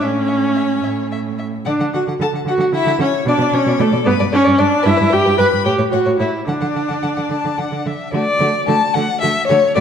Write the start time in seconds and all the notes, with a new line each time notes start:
0.01 A2 C#4 C#5 E5
0.28 E5
0.56 E5
0.83 A2 E5
1.12 E5
1.39 E5
1.65 D3 D4 D5 F#5
1.80 D3 F#5
1.94 D3 F#4 F#5
2.07 D3 F#5
2.20 D3 A4 F#5 A5
2.33 D3 F#5
2.45 D3 F#4 F#5
2.58 D3 F#5
2.72 D3 E4 E5 F#5
2.85 D3 F#5
2.99 D3 C#4 C#5 F#5
3.26 B2 D4 D5
3.38 B2 D5
3.53 B2 C#4 C#5 D5
3.66 B2 D5
3.79 B2 A3 A4 D5
3.92 B2 D5
4.04 G2 B3 B4 D5
4.20 G2 D5
4.32 G2 C#4 C#5 D5
4.44 G2 D5
4.58 G2 D4 D5
4.83 G2 E4 B4 E5
4.96 B4
5.00 G2
5.09 G2 G4 B4
5.13 G5
5.25 G2 B4
5.38 G2 B4 B5
5.51 G2 B4
5.65 A2 G4 C#5 G5
5.78 A2 C#5
5.92 A2 F#4 C#5 F#5
6.05 A2 C#5
6.19 A2 E4 C#5 E5
6.47 D3 D4 D5 F#5
6.61 D3 F#5
6.75 D3 F#5
6.88 D3 F#5
7.03 D3 F#5
7.16 D3 F#5
7.30 D3 A5
7.45 D3
7.58 D3 F#5
7.71 D3
7.86 D3 E5
8.13 D3 A3 F#4 D5
8.40 D3 A3 F#4
8.68 D3 A3 F#4 A5
8.94 D3 A3 F#4 F#5
9.21 D3 A3 F#4 E5
9.47 D3 A3 F#4 C#5
9.75 B2 A3 F#4 D5